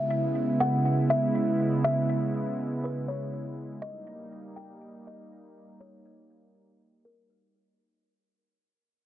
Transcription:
0, 0, Header, 1, 3, 480
1, 0, Start_track
1, 0, Tempo, 495868
1, 1783, Time_signature, 4, 2, 24, 8
1, 8764, End_track
2, 0, Start_track
2, 0, Title_t, "Kalimba"
2, 0, Program_c, 0, 108
2, 0, Note_on_c, 0, 76, 107
2, 542, Note_off_c, 0, 76, 0
2, 584, Note_on_c, 0, 78, 88
2, 1035, Note_off_c, 0, 78, 0
2, 1065, Note_on_c, 0, 76, 82
2, 1745, Note_off_c, 0, 76, 0
2, 1784, Note_on_c, 0, 76, 99
2, 2705, Note_off_c, 0, 76, 0
2, 2751, Note_on_c, 0, 71, 82
2, 2975, Note_off_c, 0, 71, 0
2, 2984, Note_on_c, 0, 73, 82
2, 3211, Note_off_c, 0, 73, 0
2, 3696, Note_on_c, 0, 75, 106
2, 4381, Note_off_c, 0, 75, 0
2, 4417, Note_on_c, 0, 79, 78
2, 4871, Note_off_c, 0, 79, 0
2, 4907, Note_on_c, 0, 75, 73
2, 5587, Note_off_c, 0, 75, 0
2, 5618, Note_on_c, 0, 73, 105
2, 6782, Note_off_c, 0, 73, 0
2, 6824, Note_on_c, 0, 70, 68
2, 7505, Note_off_c, 0, 70, 0
2, 8764, End_track
3, 0, Start_track
3, 0, Title_t, "Analog synth pad"
3, 0, Program_c, 1, 89
3, 0, Note_on_c, 1, 49, 82
3, 0, Note_on_c, 1, 56, 76
3, 0, Note_on_c, 1, 59, 77
3, 0, Note_on_c, 1, 64, 88
3, 3666, Note_off_c, 1, 49, 0
3, 3666, Note_off_c, 1, 56, 0
3, 3666, Note_off_c, 1, 59, 0
3, 3666, Note_off_c, 1, 64, 0
3, 3702, Note_on_c, 1, 58, 78
3, 3703, Note_on_c, 1, 55, 85
3, 3703, Note_on_c, 1, 63, 95
3, 7504, Note_off_c, 1, 58, 0
3, 7505, Note_off_c, 1, 55, 0
3, 7505, Note_off_c, 1, 63, 0
3, 8764, End_track
0, 0, End_of_file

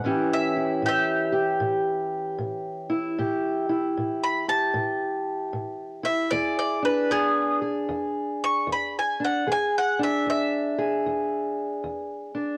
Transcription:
0, 0, Header, 1, 3, 480
1, 0, Start_track
1, 0, Tempo, 786370
1, 26, Time_signature, 4, 2, 24, 8
1, 7674, End_track
2, 0, Start_track
2, 0, Title_t, "Mandolin"
2, 0, Program_c, 0, 25
2, 0, Note_on_c, 0, 78, 59
2, 183, Note_off_c, 0, 78, 0
2, 204, Note_on_c, 0, 76, 81
2, 505, Note_off_c, 0, 76, 0
2, 524, Note_on_c, 0, 67, 69
2, 540, Note_on_c, 0, 76, 73
2, 1927, Note_off_c, 0, 67, 0
2, 1934, Note_off_c, 0, 76, 0
2, 2586, Note_on_c, 0, 83, 72
2, 2738, Note_off_c, 0, 83, 0
2, 2741, Note_on_c, 0, 81, 86
2, 3677, Note_off_c, 0, 81, 0
2, 3692, Note_on_c, 0, 76, 83
2, 3850, Note_on_c, 0, 74, 82
2, 3852, Note_off_c, 0, 76, 0
2, 4010, Note_off_c, 0, 74, 0
2, 4022, Note_on_c, 0, 74, 73
2, 4177, Note_off_c, 0, 74, 0
2, 4182, Note_on_c, 0, 71, 79
2, 4337, Note_off_c, 0, 71, 0
2, 4341, Note_on_c, 0, 59, 64
2, 4345, Note_on_c, 0, 68, 81
2, 4631, Note_off_c, 0, 59, 0
2, 4646, Note_off_c, 0, 68, 0
2, 5151, Note_on_c, 0, 85, 88
2, 5302, Note_off_c, 0, 85, 0
2, 5326, Note_on_c, 0, 83, 71
2, 5470, Note_off_c, 0, 83, 0
2, 5487, Note_on_c, 0, 80, 59
2, 5631, Note_off_c, 0, 80, 0
2, 5644, Note_on_c, 0, 78, 72
2, 5789, Note_off_c, 0, 78, 0
2, 5810, Note_on_c, 0, 80, 81
2, 5952, Note_off_c, 0, 80, 0
2, 5970, Note_on_c, 0, 78, 78
2, 6112, Note_off_c, 0, 78, 0
2, 6124, Note_on_c, 0, 76, 75
2, 6269, Note_off_c, 0, 76, 0
2, 6286, Note_on_c, 0, 76, 80
2, 7211, Note_off_c, 0, 76, 0
2, 7674, End_track
3, 0, Start_track
3, 0, Title_t, "Steel-string acoustic guitar"
3, 0, Program_c, 1, 25
3, 23, Note_on_c, 1, 45, 60
3, 28, Note_on_c, 1, 52, 56
3, 34, Note_on_c, 1, 61, 58
3, 36, Note_on_c, 1, 64, 52
3, 41, Note_on_c, 1, 67, 58
3, 343, Note_off_c, 1, 64, 0
3, 346, Note_on_c, 1, 64, 51
3, 469, Note_off_c, 1, 45, 0
3, 501, Note_on_c, 1, 45, 64
3, 804, Note_off_c, 1, 67, 0
3, 807, Note_on_c, 1, 67, 62
3, 948, Note_off_c, 1, 45, 0
3, 976, Note_on_c, 1, 45, 65
3, 1425, Note_off_c, 1, 45, 0
3, 1454, Note_on_c, 1, 45, 60
3, 1764, Note_off_c, 1, 64, 0
3, 1767, Note_on_c, 1, 64, 60
3, 1904, Note_off_c, 1, 45, 0
3, 1917, Note_off_c, 1, 67, 0
3, 1925, Note_off_c, 1, 61, 0
3, 1943, Note_on_c, 1, 45, 69
3, 1946, Note_on_c, 1, 67, 60
3, 2251, Note_off_c, 1, 64, 0
3, 2254, Note_on_c, 1, 64, 55
3, 2388, Note_off_c, 1, 45, 0
3, 2426, Note_on_c, 1, 45, 70
3, 2729, Note_off_c, 1, 67, 0
3, 2737, Note_on_c, 1, 67, 54
3, 2869, Note_off_c, 1, 45, 0
3, 2894, Note_on_c, 1, 45, 74
3, 3343, Note_off_c, 1, 45, 0
3, 3375, Note_on_c, 1, 45, 61
3, 3679, Note_off_c, 1, 64, 0
3, 3682, Note_on_c, 1, 64, 59
3, 3824, Note_off_c, 1, 45, 0
3, 3843, Note_off_c, 1, 67, 0
3, 3855, Note_on_c, 1, 40, 65
3, 3860, Note_on_c, 1, 68, 65
3, 3862, Note_off_c, 1, 52, 0
3, 4164, Note_off_c, 1, 64, 0
3, 4166, Note_on_c, 1, 62, 52
3, 4305, Note_off_c, 1, 40, 0
3, 4338, Note_on_c, 1, 40, 65
3, 4646, Note_off_c, 1, 68, 0
3, 4649, Note_on_c, 1, 68, 55
3, 4786, Note_off_c, 1, 40, 0
3, 4814, Note_on_c, 1, 40, 73
3, 5265, Note_off_c, 1, 40, 0
3, 5292, Note_on_c, 1, 40, 61
3, 5609, Note_off_c, 1, 62, 0
3, 5616, Note_on_c, 1, 62, 55
3, 5744, Note_off_c, 1, 40, 0
3, 5761, Note_off_c, 1, 68, 0
3, 5764, Note_off_c, 1, 62, 0
3, 5779, Note_on_c, 1, 40, 60
3, 5783, Note_on_c, 1, 68, 58
3, 6098, Note_on_c, 1, 62, 56
3, 6228, Note_off_c, 1, 40, 0
3, 6264, Note_on_c, 1, 40, 68
3, 6576, Note_off_c, 1, 68, 0
3, 6583, Note_on_c, 1, 68, 64
3, 6711, Note_off_c, 1, 40, 0
3, 6753, Note_on_c, 1, 40, 71
3, 7195, Note_off_c, 1, 40, 0
3, 7225, Note_on_c, 1, 40, 54
3, 7528, Note_off_c, 1, 62, 0
3, 7535, Note_on_c, 1, 62, 54
3, 7671, Note_off_c, 1, 40, 0
3, 7674, Note_off_c, 1, 62, 0
3, 7674, Note_off_c, 1, 68, 0
3, 7674, End_track
0, 0, End_of_file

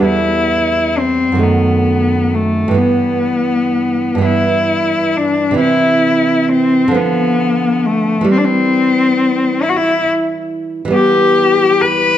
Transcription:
0, 0, Header, 1, 3, 480
1, 0, Start_track
1, 0, Key_signature, 1, "minor"
1, 0, Tempo, 916031
1, 21, Time_signature, 6, 3, 24, 8
1, 1462, Tempo, 963082
1, 2422, Tempo, 903614
1, 3862, Tempo, 875912
1, 6466, End_track
2, 0, Start_track
2, 0, Title_t, "Cello"
2, 0, Program_c, 0, 42
2, 29, Note_on_c, 0, 64, 63
2, 514, Note_on_c, 0, 60, 59
2, 521, Note_off_c, 0, 64, 0
2, 749, Note_on_c, 0, 59, 53
2, 756, Note_off_c, 0, 60, 0
2, 1226, Note_on_c, 0, 57, 50
2, 1234, Note_off_c, 0, 59, 0
2, 1458, Note_on_c, 0, 59, 55
2, 1466, Note_off_c, 0, 57, 0
2, 2185, Note_off_c, 0, 59, 0
2, 2188, Note_on_c, 0, 64, 62
2, 2662, Note_on_c, 0, 62, 57
2, 2670, Note_off_c, 0, 64, 0
2, 2888, Note_off_c, 0, 62, 0
2, 2891, Note_on_c, 0, 64, 61
2, 3366, Note_off_c, 0, 64, 0
2, 3377, Note_on_c, 0, 60, 63
2, 3621, Note_on_c, 0, 59, 63
2, 3628, Note_off_c, 0, 60, 0
2, 4099, Note_on_c, 0, 57, 61
2, 4107, Note_off_c, 0, 59, 0
2, 4342, Note_off_c, 0, 57, 0
2, 4345, Note_on_c, 0, 60, 69
2, 4381, Note_on_c, 0, 62, 60
2, 4389, Note_off_c, 0, 60, 0
2, 4418, Note_on_c, 0, 60, 72
2, 4426, Note_off_c, 0, 62, 0
2, 5069, Note_on_c, 0, 64, 67
2, 5077, Note_off_c, 0, 60, 0
2, 5103, Note_on_c, 0, 66, 54
2, 5112, Note_off_c, 0, 64, 0
2, 5143, Note_on_c, 0, 64, 71
2, 5151, Note_off_c, 0, 66, 0
2, 5311, Note_off_c, 0, 64, 0
2, 5791, Note_on_c, 0, 67, 82
2, 6266, Note_on_c, 0, 71, 102
2, 6274, Note_off_c, 0, 67, 0
2, 6466, Note_off_c, 0, 71, 0
2, 6466, End_track
3, 0, Start_track
3, 0, Title_t, "Nylon-string guitar"
3, 0, Program_c, 1, 24
3, 0, Note_on_c, 1, 40, 38
3, 0, Note_on_c, 1, 55, 31
3, 0, Note_on_c, 1, 59, 30
3, 690, Note_off_c, 1, 40, 0
3, 692, Note_on_c, 1, 42, 40
3, 708, Note_on_c, 1, 51, 31
3, 709, Note_off_c, 1, 55, 0
3, 717, Note_off_c, 1, 59, 0
3, 726, Note_on_c, 1, 57, 33
3, 1402, Note_off_c, 1, 42, 0
3, 1404, Note_on_c, 1, 43, 44
3, 1418, Note_off_c, 1, 51, 0
3, 1421, Note_on_c, 1, 52, 33
3, 1429, Note_off_c, 1, 57, 0
3, 1438, Note_on_c, 1, 59, 35
3, 2134, Note_off_c, 1, 43, 0
3, 2140, Note_on_c, 1, 43, 39
3, 2149, Note_off_c, 1, 52, 0
3, 2156, Note_on_c, 1, 52, 35
3, 2157, Note_off_c, 1, 59, 0
3, 2170, Note_on_c, 1, 59, 33
3, 2843, Note_on_c, 1, 48, 39
3, 2853, Note_off_c, 1, 43, 0
3, 2853, Note_off_c, 1, 52, 0
3, 2859, Note_on_c, 1, 52, 38
3, 2869, Note_off_c, 1, 59, 0
3, 2878, Note_on_c, 1, 60, 37
3, 3568, Note_off_c, 1, 52, 0
3, 3570, Note_on_c, 1, 50, 50
3, 3573, Note_off_c, 1, 48, 0
3, 3588, Note_on_c, 1, 53, 36
3, 3590, Note_off_c, 1, 60, 0
3, 3606, Note_on_c, 1, 59, 39
3, 4289, Note_off_c, 1, 50, 0
3, 4291, Note_on_c, 1, 52, 45
3, 4306, Note_off_c, 1, 53, 0
3, 4309, Note_on_c, 1, 55, 39
3, 4315, Note_off_c, 1, 59, 0
3, 5731, Note_off_c, 1, 52, 0
3, 5737, Note_on_c, 1, 52, 48
3, 5746, Note_off_c, 1, 55, 0
3, 5753, Note_on_c, 1, 55, 49
3, 5768, Note_on_c, 1, 59, 40
3, 6466, Note_off_c, 1, 52, 0
3, 6466, Note_off_c, 1, 55, 0
3, 6466, Note_off_c, 1, 59, 0
3, 6466, End_track
0, 0, End_of_file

